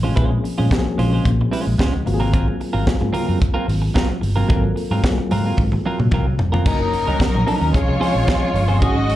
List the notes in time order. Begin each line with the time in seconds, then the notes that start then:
Already playing: A1 F3 A#3 C4 C#4 G#4
0.03 G#3 C#4 F4 C5, low conga
0.15 A#1 F3 G#3 A#3 C4 C#4 F4 G#4 C5, kick, closed hi-hat
0.31 muted clean electric guitar stroke, muted conga
0.43 muted clean electric guitar stroke, open hi-hat
0.58 A#2 G#3 C#4 F4 C5, high conga
0.71 F3 A#3 C4 C#4 F#4, muted clean electric guitar stroke, kick, snare, closed hi-hat, high conga
0.78 G#4
0.85 muted clean electric guitar stroke, muted conga, high conga
0.98 A#1 G#3 C#4 F4 C5, open hi-hat, low conga
1.13 G#3 C#4 F4 C5
1.25 A#2, kick, closed hi-hat
1.40 muted clean electric guitar stroke, muted conga
1.51 G#3 C#4 F4 C5, open hi-hat
1.66 A#1, muted clean electric guitar stroke
1.78 C#2 G#3 C#4 F4 C5, kick, snare, closed hi-hat, muted conga, high conga
1.93 muted clean electric guitar stroke, muted conga
2.05 G#1 F#3 A#3 C4 F4 F#4, muted clean electric guitar stroke, open hi-hat, high conga
2.14 G#4
2.20 F#3 C4 F4 A#4, low conga
2.33 F#3 C4 F4 A#4, kick, closed hi-hat
2.48 muted clean electric guitar stroke, muted conga
2.60 muted clean electric guitar stroke, open hi-hat
2.73 G#1 F#3 C4 F4 A#4, high conga
2.86 F#3 A#3 C4 F4 G#4, kick, snare, closed hi-hat, high conga
3.01 G#2, muted clean electric guitar stroke, high conga
3.13 F#3 C4 F4 A#4, open hi-hat, low conga
3.27 F#2 F#3 C4 F4 A#4
3.40 muted clean electric guitar stroke, kick, closed hi-hat, muted conga
3.54 F#3 C4 F4 A#4
3.67 G#1, muted clean electric guitar stroke, open hi-hat
3.82 muted clean electric guitar stroke
3.94 F#3 C4 F4 A#4, kick, snare, closed hi-hat, high conga
4.10 muted clean electric guitar stroke
4.21 G1, muted clean electric guitar stroke, open hi-hat, high conga
4.36 F#3 C4 F4 A#4, low conga
4.48 G#1 F#3 A#3 C4 F4 A4 A#4, kick, closed hi-hat, muted conga
4.56 A#4
4.64 muted clean electric guitar stroke, muted conga
4.76 muted clean electric guitar stroke, open hi-hat
4.91 G#2 F#3 C4 F4 A#4, high conga
5.03 F#3 A#3 C4 F4 G#4, muted clean electric guitar stroke, kick, snare, closed hi-hat, high conga
5.18 muted clean electric guitar stroke, muted conga, high conga
5.31 G#2 F#3 C4 F4 A#4, open hi-hat, low conga
5.45 F#3 C4 F4 A#4
5.57 G#2, kick, high tom
5.72 muted clean electric guitar stroke, high tom, muted conga
5.86 F#3 C4 F4 A#4
6.00 A#2, muted clean electric guitar stroke, mid tom
6.11 C2 F#3 C4 F4 A#4, kick, mid tom, muted conga, high conga
6.27 muted clean electric guitar stroke
6.38 F1, muted clean electric guitar stroke, floor tom, high conga
6.52 F#3 C4 F4 A#4, floor tom, low conga
6.65 F#1 F#3 A#3 C#4 D#4 A#4, kick, crash, muted conga, low conga
6.80 muted clean electric guitar stroke
6.93 muted clean electric guitar stroke, open hi-hat
7.07 C#2 F#3 C#4 D#4 A#4, high conga
7.20 muted clean electric guitar stroke, kick, snare, closed hi-hat, high conga
7.34 A#1, muted clean electric guitar stroke, muted conga, high conga
7.47 F#3 C#4 D#4 A#4, open hi-hat, low conga
7.61 D#2 F#3 C#4 D#4 A#4
7.73 F3 G#3 C4 C#4 F4 G#4 C#5, kick, closed hi-hat
7.87 C2, muted clean electric guitar stroke
8.00 F3 G#3 C4 C#4 F4 G#4 C5, open hi-hat
8.15 A#1, muted clean electric guitar stroke, high conga
8.27 C4 F4 G#4 C5, kick, snare, closed hi-hat, muted conga, high conga
8.42 muted clean electric guitar stroke, muted conga
8.54 G1, muted clean electric guitar stroke, open hi-hat, high conga
8.68 C4 F4 G#4 C5, low conga
8.81 G#1 F#3 G#3 C#4 D#4 F#4 G#4 C#5 D#5, kick, closed hi-hat, muted conga, low conga
8.89 G#4
8.96 muted clean electric guitar stroke
9.10 muted clean electric guitar stroke, open hi-hat